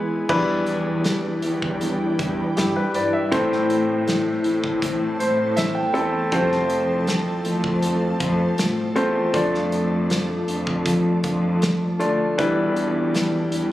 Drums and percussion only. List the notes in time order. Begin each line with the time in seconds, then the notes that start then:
0.29 kick, crash
0.66 closed hi-hat
1.04 snare, closed hi-hat
1.42 closed hi-hat
1.62 kick
1.81 closed hi-hat
2.19 kick, closed hi-hat
2.57 snare, closed hi-hat
2.94 closed hi-hat
3.32 kick, closed hi-hat
3.53 snare
3.70 closed hi-hat
4.07 snare, closed hi-hat
4.44 closed hi-hat
4.64 kick
4.82 kick, closed hi-hat
5.20 closed hi-hat
5.57 snare, closed hi-hat
5.95 closed hi-hat
6.32 kick, closed hi-hat
6.52 snare
6.70 closed hi-hat
7.07 snare, closed hi-hat
7.45 closed hi-hat
7.64 kick
7.82 closed hi-hat
8.20 kick, closed hi-hat
8.58 snare, closed hi-hat
8.96 closed hi-hat
9.34 kick, closed hi-hat
9.55 snare
9.72 closed hi-hat
10.10 snare, closed hi-hat
10.48 closed hi-hat
10.67 kick
10.86 kick, closed hi-hat
11.24 kick, closed hi-hat
11.62 snare, closed hi-hat
12.00 closed hi-hat
12.39 kick, closed hi-hat
12.76 closed hi-hat
13.14 snare, closed hi-hat
13.52 closed hi-hat